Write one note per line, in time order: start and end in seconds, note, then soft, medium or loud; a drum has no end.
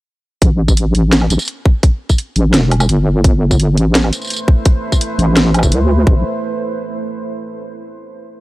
0.42 0.94 A1 loud
0.42 kick loud
0.42 closed hi-hat medium
0.68 kick medium
0.68 tambourine medium
0.77 closed hi-hat medium
0.94 1.29 A1 loud
0.94 closed hi-hat medium
1.13 snare loud
1.13 closed hi-hat medium
1.21 low woodblock soft
1.30 1.38 A1 medium
1.30 closed hi-hat medium
1.30 tambourine medium
1.39 tambourine medium
1.42 tambourine medium
1.45 closed hi-hat medium
1.45 tambourine soft
1.66 kick loud
1.83 kick loud
1.83 closed hi-hat medium
2.09 kick medium
2.09 tambourine medium
2.18 closed hi-hat medium
2.36 2.55 A1 loud
2.36 closed hi-hat medium
2.53 2.88 E1 medium
2.53 snare loud
2.53 closed hi-hat medium
2.71 closed hi-hat medium
2.71 low woodblock medium
2.80 tambourine medium
2.80 low woodblock medium
2.89 3.79 G1 loud
2.89 closed hi-hat medium
3.24 6.04 A3 medium
3.24 6.04 E4 medium
3.24 6.04 B4 medium
3.24 6.04 C5 medium
3.24 kick loud
3.24 closed hi-hat medium
3.51 kick medium
3.51 tambourine medium
3.60 closed hi-hat medium
3.77 4.11 A1 loud
3.77 closed hi-hat medium
3.95 snare loud
3.95 closed hi-hat medium
4.04 low woodblock soft
4.13 closed hi-hat medium
4.13 tambourine medium
4.22 tambourine soft
4.25 tambourine soft
4.27 closed hi-hat medium
4.27 tambourine soft
4.30 tambourine soft
4.33 tambourine soft
4.36 tambourine medium
4.48 kick loud
4.65 kick loud
4.65 closed hi-hat medium
4.92 kick medium
4.92 tambourine medium
5.01 closed hi-hat medium
5.18 5.64 A1 loud
5.18 closed hi-hat medium
5.37 snare loud
5.37 closed hi-hat medium
5.54 closed hi-hat medium
5.54 low woodblock medium
5.59 low woodblock medium
5.63 5.73 E1 loud
5.63 kick medium
5.63 tambourine medium
5.71 6.06 D2 medium
5.71 closed hi-hat medium
6.07 6.23 A1 loud
6.07 kick loud